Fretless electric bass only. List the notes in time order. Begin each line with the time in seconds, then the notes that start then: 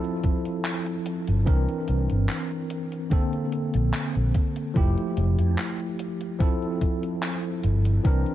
1.28 G1
1.47 C2
1.89 C2
2.11 G1
3.75 A#1
4.16 A#1
4.76 F1
5.17 F1
5.39 F2
7.64 G1
8.05 C2